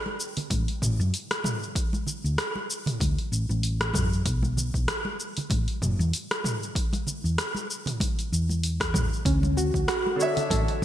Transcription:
0.06 high conga medium
0.20 shaker medium
0.37 open hi-hat soft
0.37 low conga medium
0.37 shaker soft
0.50 0.65 A1 medium
0.50 kick medium
0.50 open hi-hat medium
0.50 high conga medium
0.50 shaker soft
0.68 open hi-hat soft
0.82 0.97 A1 medium
0.82 mid tom medium
0.82 shaker medium
0.99 1.11 F#2 loud
0.99 high conga medium
0.99 shaker soft
1.14 open hi-hat medium
1.14 shaker soft
1.31 cross-stick medium
1.31 open hi-hat soft
1.31 shaker soft
1.44 mid tom medium
1.44 high conga medium
1.44 shaker medium
1.63 shaker soft
1.75 kick loud
1.75 open hi-hat medium
1.75 shaker soft
1.93 high conga medium
1.93 shaker soft
2.07 low conga medium
2.07 shaker medium
2.24 2.36 D2 medium
2.24 shaker soft
2.38 cross-stick medium
2.38 open hi-hat medium
2.38 shaker soft
2.55 high conga medium
2.70 shaker medium
2.86 mid tom medium
2.86 open hi-hat soft
2.86 low conga medium
2.86 shaker soft
3.00 3.15 D2 medium
3.00 kick loud
3.00 open hi-hat medium
3.00 high conga medium
3.00 shaker soft
3.19 open hi-hat soft
3.32 3.46 A1 medium
3.32 shaker medium
3.49 3.91 A1 medium
3.49 high conga medium
3.49 shaker soft
3.63 open hi-hat medium
3.63 shaker soft
3.81 cross-stick medium
3.81 open hi-hat soft
3.81 shaker soft
3.94 4.21 F#2 medium
3.94 kick loud
3.94 mid tom medium
3.94 high conga medium
3.94 shaker medium
4.13 shaker soft
4.25 4.70 B1 medium
4.25 kick loud
4.25 open hi-hat medium
4.25 shaker soft
4.43 high conga medium
4.43 shaker soft
4.57 low conga medium
4.57 shaker medium
4.74 4.86 B1 medium
4.74 kick medium
4.74 shaker soft
4.88 cross-stick medium
4.88 open hi-hat medium
4.88 shaker soft
5.05 high conga medium
5.20 shaker medium
5.37 open hi-hat soft
5.37 low conga medium
5.37 shaker soft
5.50 5.65 A1 medium
5.50 kick loud
5.50 open hi-hat medium
5.50 high conga medium
5.50 shaker soft
5.68 open hi-hat soft
5.82 5.96 F#1 medium
5.82 mid tom medium
5.82 shaker medium
5.99 6.11 E2 loud
5.99 high conga medium
5.99 shaker soft
6.13 open hi-hat medium
6.13 shaker soft
6.31 cross-stick medium
6.31 open hi-hat soft
6.31 shaker soft
6.44 mid tom medium
6.44 high conga medium
6.44 shaker medium
6.63 shaker soft
6.75 kick loud
6.75 open hi-hat medium
6.75 shaker soft
6.93 open hi-hat soft
6.93 high conga medium
6.93 shaker soft
7.07 low conga medium
7.07 shaker medium
7.24 7.36 E2 medium
7.24 shaker soft
7.38 cross-stick medium
7.38 open hi-hat medium
7.38 shaker soft
7.55 high conga medium
7.55 shaker soft
7.71 shaker medium
7.86 mid tom medium
7.86 open hi-hat soft
7.86 low conga medium
7.86 shaker soft
8.00 kick loud
8.00 open hi-hat medium
8.00 high conga medium
8.00 shaker soft
8.19 open hi-hat soft
8.19 shaker soft
8.32 9.07 E2 medium
8.32 shaker medium
8.49 high conga medium
8.49 shaker soft
8.63 open hi-hat medium
8.63 shaker soft
8.80 kick medium
8.80 cross-stick medium
8.80 open hi-hat soft
8.80 shaker soft
8.94 kick loud
8.94 mid tom medium
8.94 high conga medium
8.94 shaker medium
9.13 shaker soft
9.25 9.70 D2 medium
9.25 9.44 C#4 medium
9.25 kick loud
9.25 open hi-hat medium
9.25 shaker soft
9.43 high conga medium
9.43 shaker soft
9.57 9.86 F#4 medium
9.57 low conga medium
9.57 shaker medium
9.74 9.86 D2 medium
9.74 kick medium
9.74 shaker soft
9.88 10.17 F#4 loud
9.88 cross-stick medium
9.88 open hi-hat medium
9.88 shaker soft
10.07 high conga medium
10.16 10.85 D3 loud
10.16 10.85 D4 medium
10.16 10.85 F#4 medium
10.20 10.85 C#5 medium
10.20 10.85 E5 loud
10.20 shaker medium
10.37 open hi-hat soft
10.37 low conga medium
10.37 shaker soft
10.50 10.65 A1 medium
10.50 10.79 A4 medium
10.50 kick loud
10.50 open hi-hat medium
10.50 high conga medium
10.50 shaker soft
10.68 open hi-hat soft

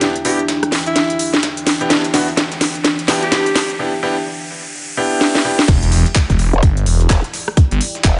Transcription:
0.00 3.75 E3 medium
0.00 0.13 B3 medium
0.00 3.75 D4 medium
0.00 0.13 D4 medium
0.00 0.13 E4 medium
0.00 0.13 G4 medium
0.00 3.75 G5 medium
0.00 snare medium
0.00 closed hi-hat medium
0.00 riser medium
0.16 closed hi-hat medium
0.25 0.36 B3 medium
0.25 0.36 D4 medium
0.25 0.36 E4 medium
0.25 0.36 G4 loud
0.25 0.44 G4 medium
0.25 closed hi-hat medium
0.25 open hi-hat loud
0.39 closed hi-hat soft
0.48 snare loud
0.48 closed hi-hat medium
0.63 cross-stick medium
0.63 closed hi-hat soft
0.72 snare medium
0.72 snare soft
0.72 closed hi-hat medium
0.72 open hi-hat medium
0.86 1.34 E4 loud
0.86 closed hi-hat soft
0.96 snare medium
0.96 closed hi-hat medium
1.10 closed hi-hat soft
1.19 closed hi-hat medium
1.19 open hi-hat loud
1.34 snare medium
1.34 closed hi-hat soft
1.43 snare loud
1.43 closed hi-hat medium
1.57 closed hi-hat medium
1.67 snare medium
1.67 closed hi-hat medium
1.67 open hi-hat medium
1.81 1.88 B3 medium
1.81 1.88 D4 medium
1.81 1.88 E4 medium
1.81 1.88 G4 medium
1.81 closed hi-hat soft
1.90 2.02 B3 medium
1.90 2.02 D4 medium
1.90 2.02 E4 medium
1.90 2.02 G4 medium
1.90 snare medium
1.90 closed hi-hat medium
2.04 closed hi-hat medium
2.04 closed hi-hat soft
2.14 2.25 B3 medium
2.14 2.25 D4 medium
2.14 2.25 E4 medium
2.14 2.25 F#4 loud
2.14 snare medium
2.14 closed hi-hat medium
2.14 open hi-hat loud
2.28 closed hi-hat soft
2.37 snare medium
2.37 snare loud
2.37 closed hi-hat medium
2.52 snare soft
2.52 closed hi-hat medium
2.61 snare medium
2.61 closed hi-hat medium
2.61 open hi-hat loud
2.75 closed hi-hat soft
2.85 snare medium
2.85 closed hi-hat medium
2.99 closed hi-hat soft
3.08 3.25 B3 medium
3.08 3.25 D4 medium
3.08 3.25 E4 medium
3.08 3.25 G4 loud
3.08 snare medium
3.08 closed hi-hat medium
3.08 open hi-hat loud
3.22 3.79 G4 medium
3.22 closed hi-hat soft
3.32 3.44 B3 medium
3.32 3.44 D4 medium
3.32 3.44 E4 medium
3.32 3.44 G4 medium
3.32 snare medium
3.32 snare loud
3.32 closed hi-hat medium
3.32 open hi-hat medium
3.46 closed hi-hat medium
3.56 snare soft
3.56 snare medium
3.56 closed hi-hat medium
3.56 open hi-hat loud
3.70 closed hi-hat soft
3.79 3.91 B3 medium
3.79 3.91 D4 medium
3.79 3.91 E4 medium
3.79 3.91 G4 medium
4.03 4.14 B3 loud
4.03 4.14 D4 medium
4.03 4.14 E4 medium
4.03 4.14 G4 loud
4.97 5.42 B3 medium
4.97 5.42 D4 medium
4.97 5.42 E4 medium
4.97 5.42 G4 loud
5.21 snare medium
5.35 snare medium
5.45 5.56 B3 medium
5.45 5.56 D4 medium
5.45 5.56 E4 medium
5.45 5.56 G4 medium
5.59 snare medium
5.68 5.80 E1 loud
5.68 8.20 E4 medium
5.68 8.20 D5 medium
5.68 8.20 G5 loud
5.68 kick loud
5.68 closed hi-hat medium
5.68 crash loud
5.68 impact medium
5.82 6.04 E1 loud
5.82 closed hi-hat soft
5.82 closed hi-hat medium
5.92 closed hi-hat medium
5.92 open hi-hat loud
6.06 closed hi-hat soft
6.15 kick loud
6.15 snare loud
6.15 clap loud
6.15 closed hi-hat medium
6.30 6.51 E1 loud
6.30 kick medium
6.30 snare soft
6.30 closed hi-hat medium
6.39 closed hi-hat medium
6.39 open hi-hat medium
6.53 6.61 E1 loud
6.53 closed hi-hat soft
6.63 6.85 G1 loud
6.63 kick loud
6.63 closed hi-hat medium
6.77 closed hi-hat medium
6.86 7.08 E1 medium
6.86 closed hi-hat medium
6.86 open hi-hat loud
7.01 closed hi-hat soft
7.10 7.22 E1 loud
7.10 kick loud
7.10 snare loud
7.10 clap loud
7.10 closed hi-hat medium
7.10 open hi-hat medium
7.24 closed hi-hat medium
7.34 snare soft
7.34 closed hi-hat medium
7.34 open hi-hat medium
7.48 cross-stick medium
7.57 kick loud
7.57 closed hi-hat medium
7.71 7.79 G1 loud
7.71 closed hi-hat medium
7.81 closed hi-hat medium
7.81 open hi-hat loud
7.95 snare soft
7.95 closed hi-hat soft
8.04 8.20 E1 medium
8.04 kick loud
8.04 snare loud
8.04 clap loud
8.04 closed hi-hat medium

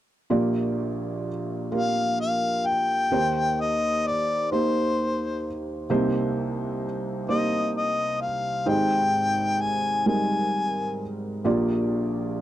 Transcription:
0.30 3.06 A#1 soft
0.30 3.06 A#2 medium
0.30 1.28 A#3 medium
0.30 1.27 F4 medium
0.30 1.28 G4 medium
0.30 1.28 D5 medium
1.72 2.68 A#3 soft
1.72 2.68 F4 soft
1.72 2.68 G4 soft
1.72 2.68 A#4 soft
1.72 2.17 F5 medium
2.20 2.68 F5 medium
2.66 3.62 G5 medium
3.11 5.86 D#2 soft
3.11 5.86 D#3 soft
3.11 4.07 A#3 medium
3.11 4.08 D#4 soft
3.11 4.08 G4 soft
3.11 4.08 C5 medium
3.61 4.09 D#5 medium
4.07 4.51 D5 medium
4.52 5.47 A#3 soft
4.52 5.47 D#4 soft
4.52 5.47 G4 soft
4.52 5.51 C5 medium
4.52 5.47 C5 soft
5.90 8.63 C2 medium
5.90 8.63 C3 medium
5.90 6.85 A#3 medium
5.90 6.85 D#4 medium
5.90 6.85 G4 medium
5.90 6.86 C5 medium
7.29 8.24 A#3 soft
7.29 8.24 D#4 soft
7.29 8.24 G4 soft
7.29 8.24 C5 medium
7.29 7.72 D#5 medium
7.77 8.19 D#5 medium
8.21 8.71 F5 medium
8.66 11.41 G#1 soft
8.66 11.41 G#2 soft
8.66 9.62 G#3 medium
8.66 9.62 D#4 medium
8.66 9.62 G4 soft
8.66 9.62 C5 medium
8.66 9.63 G5 medium
9.61 10.07 G#5 medium
10.06 11.02 G3 soft
10.06 11.02 G#3 soft
10.06 11.02 D#4 soft
10.06 11.02 A#4 medium
10.06 11.08 G#5 medium
11.44 12.41 A#1 medium
11.44 12.41 A#2 soft
11.44 12.41 A#3 medium
11.44 12.41 F4 medium
11.44 12.41 G4 medium
11.44 12.41 D5 medium

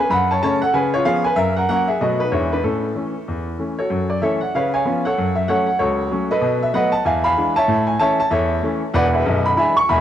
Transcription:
0.00 0.11 B4 medium
0.10 0.37 F#2 medium
0.10 0.29 F#5 medium
0.10 0.27 B5 loud
0.31 0.43 C#5 medium
0.31 0.41 A5 medium
0.43 0.60 C#3 soft
0.43 0.61 A3 soft
0.43 0.60 C#4 medium
0.43 0.61 C#5 medium
0.43 0.59 A5 loud
0.62 0.74 A4 medium
0.62 0.72 F#5 medium
0.73 1.01 C#3 medium
0.73 0.93 B4 medium
0.73 0.90 G#5 medium
0.94 1.06 F4 medium
0.94 1.04 C#5 medium
1.05 1.22 F3 medium
1.05 1.23 B3 medium
1.05 1.23 C#4 medium
1.05 1.24 G#4 medium
1.05 1.22 F5 loud
1.24 1.37 B4 medium
1.24 1.35 G#5 loud
1.36 1.64 F#2 medium
1.36 1.56 A#4 medium
1.36 1.53 E5 loud
1.57 1.69 A#4 medium
1.57 1.67 F#5 medium
1.69 1.87 F#3 soft
1.69 1.87 A#3 soft
1.69 1.87 C#4 soft
1.69 1.88 A#4 medium
1.69 1.85 F#5 loud
1.88 2.00 G#4 medium
1.88 1.98 E5 medium
2.01 2.28 B2 medium
2.01 2.18 F#3 soft
2.01 2.19 A3 soft
2.01 2.19 B3 soft
2.01 2.20 F#4 medium
2.01 2.17 D#5 medium
2.20 2.32 D#4 medium
2.20 2.30 B4 medium
2.32 2.59 E2 medium
2.32 2.50 E3 soft
2.32 2.50 G#3 soft
2.32 2.51 D4 soft
2.32 2.51 E4 medium
2.32 2.48 C#5 medium
2.53 2.64 D4 medium
2.53 2.63 B4 medium
2.64 2.91 A2 medium
2.64 2.95 C#4 soft
2.64 3.44 A4 medium
2.95 3.12 E3 soft
2.95 3.13 A3 soft
2.95 3.13 C#4 soft
3.28 3.54 E2 soft
3.59 3.76 E3 soft
3.59 3.76 A3 soft
3.59 3.77 C#4 soft
3.79 4.08 F#4 soft
3.79 4.08 A4 soft
3.79 4.05 C#5 medium
3.90 4.17 F#2 medium
4.10 4.20 D5 medium
4.22 4.39 E3 soft
4.22 4.40 A3 soft
4.22 4.40 C#4 soft
4.22 4.40 A4 medium
4.22 4.40 C#5 medium
4.22 4.38 E5 medium
4.41 4.51 F#5 medium
4.55 4.81 C#3 medium
4.55 4.73 B4 medium
4.55 4.73 C#5 soft
4.55 4.71 F5 medium
4.74 5.03 C#5 medium
4.74 5.03 F5 medium
4.74 5.00 G#5 medium
4.85 5.02 F3 soft
4.85 5.03 B3 soft
4.85 5.03 C#4 medium
5.05 5.35 A4 medium
5.05 5.35 C#5 medium
5.05 5.31 F#5 medium
5.18 5.44 F#2 medium
5.35 5.46 E5 medium
5.48 5.66 F#3 soft
5.48 5.66 A3 soft
5.48 5.66 C#4 soft
5.48 5.67 A4 medium
5.48 5.66 C#5 medium
5.48 5.64 F#5 medium
5.67 5.77 F#5 medium
5.79 6.06 C#2 medium
5.79 6.27 F#4 medium
5.79 6.27 A4 medium
5.79 6.22 C#5 medium
6.11 6.28 F#3 soft
6.11 6.29 A3 soft
6.11 6.29 C#4 soft
6.31 6.60 A4 medium
6.31 6.60 B4 medium
6.31 6.57 D#5 medium
6.41 6.69 B2 medium
6.63 6.73 E5 medium
6.73 6.91 F#3 soft
6.73 6.92 A3 soft
6.73 6.92 B3 soft
6.73 6.93 B4 medium
6.73 6.93 D#5 medium
6.73 6.90 F#5 medium
6.92 7.03 A5 medium
7.05 7.32 E2 medium
7.05 7.24 E5 medium
7.05 7.24 F5 medium
7.05 7.22 G#5 medium
7.24 7.54 F5 medium
7.24 7.54 G#5 medium
7.24 7.51 B5 loud
7.37 7.55 E3 soft
7.37 7.55 G#3 soft
7.37 7.55 D4 soft
7.56 7.86 C#5 medium
7.56 7.86 E5 medium
7.56 7.83 A5 loud
7.68 7.95 A2 medium
7.87 7.98 G#5 medium
7.99 8.17 E3 medium
7.99 8.17 A3 medium
7.99 8.17 C#4 medium
7.99 8.18 C#5 medium
7.99 8.19 E5 medium
7.99 8.16 A5 loud
8.20 8.30 A5 medium
8.31 8.58 E2 medium
8.31 8.79 A4 medium
8.31 8.79 C#5 medium
8.31 8.75 E5 medium
8.63 8.80 E3 medium
8.63 8.80 A3 medium
8.63 8.81 C#4 medium
8.94 9.20 E1 medium
8.94 9.19 E2 medium
8.94 9.13 B4 loud
8.94 9.13 D5 medium
8.94 9.11 F#5 loud
9.14 9.44 G#4 medium
9.14 9.44 B4 medium
9.14 9.41 E5 medium
9.26 9.51 B0 medium
9.26 9.51 B1 medium
9.46 9.56 B5 loud
9.57 9.75 E3 medium
9.57 9.75 G#3 medium
9.57 9.75 D4 medium
9.57 9.76 E5 medium
9.57 9.77 G#5 medium
9.57 9.74 B5 loud
9.77 9.87 C#6 loud
9.89 10.01 E1 medium
9.89 10.01 E2 medium
9.89 10.01 E5 medium
9.89 10.01 G#5 medium
9.89 10.01 B5 loud

